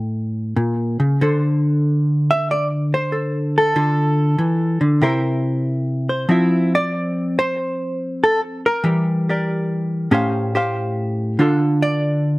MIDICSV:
0, 0, Header, 1, 2, 480
1, 0, Start_track
1, 0, Key_signature, -1, "minor"
1, 0, Tempo, 636267
1, 902, Time_signature, 4, 2, 24, 8
1, 4746, Key_signature, -1, "major"
1, 9346, End_track
2, 0, Start_track
2, 0, Title_t, "Hollow-body jazz guitar"
2, 0, Program_c, 0, 26
2, 0, Note_on_c, 0, 45, 68
2, 0, Note_on_c, 0, 79, 89
2, 421, Note_off_c, 0, 45, 0
2, 426, Note_on_c, 0, 46, 61
2, 749, Note_off_c, 0, 46, 0
2, 752, Note_on_c, 0, 49, 58
2, 903, Note_off_c, 0, 49, 0
2, 915, Note_on_c, 0, 50, 69
2, 921, Note_on_c, 0, 69, 49
2, 927, Note_off_c, 0, 79, 0
2, 928, Note_on_c, 0, 72, 48
2, 1737, Note_off_c, 0, 72, 0
2, 1740, Note_on_c, 0, 76, 99
2, 1878, Note_off_c, 0, 76, 0
2, 1894, Note_on_c, 0, 74, 89
2, 2014, Note_off_c, 0, 74, 0
2, 2218, Note_on_c, 0, 72, 93
2, 2347, Note_off_c, 0, 69, 0
2, 2356, Note_on_c, 0, 69, 44
2, 2690, Note_off_c, 0, 69, 0
2, 2699, Note_on_c, 0, 69, 82
2, 2826, Note_off_c, 0, 50, 0
2, 2835, Note_on_c, 0, 50, 74
2, 2838, Note_on_c, 0, 65, 47
2, 3166, Note_off_c, 0, 72, 0
2, 3305, Note_off_c, 0, 50, 0
2, 3308, Note_on_c, 0, 52, 64
2, 3624, Note_off_c, 0, 52, 0
2, 3627, Note_on_c, 0, 50, 63
2, 3646, Note_off_c, 0, 69, 0
2, 3774, Note_off_c, 0, 65, 0
2, 3782, Note_off_c, 0, 50, 0
2, 3783, Note_on_c, 0, 48, 71
2, 3790, Note_on_c, 0, 64, 63
2, 3794, Note_on_c, 0, 70, 60
2, 3798, Note_on_c, 0, 72, 70
2, 4588, Note_off_c, 0, 72, 0
2, 4597, Note_on_c, 0, 72, 53
2, 4727, Note_off_c, 0, 48, 0
2, 4730, Note_off_c, 0, 64, 0
2, 4730, Note_off_c, 0, 72, 0
2, 4732, Note_off_c, 0, 70, 0
2, 4742, Note_on_c, 0, 53, 67
2, 4747, Note_on_c, 0, 60, 46
2, 4755, Note_on_c, 0, 64, 49
2, 4763, Note_on_c, 0, 76, 48
2, 5078, Note_off_c, 0, 64, 0
2, 5092, Note_on_c, 0, 74, 106
2, 5563, Note_off_c, 0, 74, 0
2, 5573, Note_on_c, 0, 72, 96
2, 6194, Note_off_c, 0, 76, 0
2, 6213, Note_on_c, 0, 69, 85
2, 6334, Note_off_c, 0, 69, 0
2, 6523, Note_off_c, 0, 72, 0
2, 6533, Note_on_c, 0, 70, 79
2, 6646, Note_off_c, 0, 53, 0
2, 6666, Note_off_c, 0, 60, 0
2, 6666, Note_on_c, 0, 52, 73
2, 6673, Note_on_c, 0, 55, 43
2, 6673, Note_on_c, 0, 67, 47
2, 7003, Note_off_c, 0, 70, 0
2, 7008, Note_off_c, 0, 67, 0
2, 7011, Note_on_c, 0, 67, 41
2, 7017, Note_on_c, 0, 74, 45
2, 7020, Note_on_c, 0, 70, 39
2, 7608, Note_off_c, 0, 52, 0
2, 7619, Note_off_c, 0, 70, 0
2, 7619, Note_off_c, 0, 74, 0
2, 7629, Note_on_c, 0, 45, 74
2, 7630, Note_off_c, 0, 55, 0
2, 7633, Note_on_c, 0, 61, 62
2, 7634, Note_off_c, 0, 67, 0
2, 7637, Note_on_c, 0, 67, 68
2, 7645, Note_on_c, 0, 72, 66
2, 7653, Note_on_c, 0, 77, 62
2, 7956, Note_off_c, 0, 67, 0
2, 7959, Note_on_c, 0, 67, 60
2, 7961, Note_off_c, 0, 72, 0
2, 7964, Note_on_c, 0, 72, 61
2, 7965, Note_off_c, 0, 77, 0
2, 7972, Note_on_c, 0, 77, 67
2, 8570, Note_off_c, 0, 61, 0
2, 8576, Note_off_c, 0, 77, 0
2, 8587, Note_off_c, 0, 45, 0
2, 8592, Note_on_c, 0, 50, 72
2, 8597, Note_on_c, 0, 62, 49
2, 8599, Note_off_c, 0, 67, 0
2, 8602, Note_on_c, 0, 65, 52
2, 8608, Note_off_c, 0, 72, 0
2, 8611, Note_on_c, 0, 69, 50
2, 8920, Note_on_c, 0, 74, 97
2, 9346, Note_off_c, 0, 50, 0
2, 9346, Note_off_c, 0, 62, 0
2, 9346, Note_off_c, 0, 65, 0
2, 9346, Note_off_c, 0, 69, 0
2, 9346, Note_off_c, 0, 74, 0
2, 9346, End_track
0, 0, End_of_file